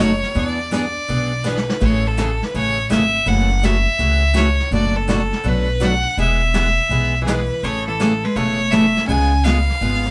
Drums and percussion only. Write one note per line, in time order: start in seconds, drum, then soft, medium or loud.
0.24 snare soft
0.36 brush sweep medium
0.72 snare medium
0.72 hi-hat pedal medium
1.09 brush sweep soft
1.46 snare soft
1.46 hi-hat pedal medium
1.57 snare medium
1.70 snare medium
1.82 brush sweep medium
1.82 kick medium
1.82 crash medium
2.18 snare medium
2.18 hi-hat pedal medium
2.42 snare soft
2.55 brush sweep soft
2.91 snare medium
2.91 hi-hat pedal medium
3.28 brush sweep soft
3.64 snare medium
3.64 hi-hat pedal medium
4.00 brush sweep medium
4.36 snare medium
4.36 hi-hat pedal medium
4.60 snare soft
4.72 brush sweep soft
5.09 snare medium
5.09 hi-hat pedal medium
5.32 snare soft
5.45 brush sweep medium
5.82 snare medium
5.82 hi-hat pedal medium
6.18 brush sweep soft
6.54 snare medium
6.54 hi-hat pedal medium
6.91 brush sweep soft
7.27 snare medium
7.27 hi-hat pedal medium
7.63 brush sweep soft
8.00 snare medium
8.00 hi-hat pedal medium
8.36 brush sweep soft
8.73 snare medium
8.73 hi-hat pedal medium
8.97 snare soft
9.10 brush sweep soft
9.46 snare medium
9.46 hi-hat pedal medium
9.69 snare soft
9.82 brush sweep soft
10.06 snare soft